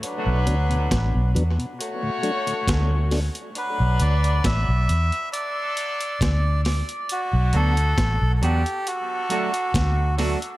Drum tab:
HH |x-xxx-xxx-xxx-ox|x-xxx-xxx-xxx-ox|x-xxx-xxx-xxx-ox|
SD |----o-------o-o-|----o-------o-o-|----o-------o-o-|
BD |----o-------o---|----o-------o---|----o-------o---|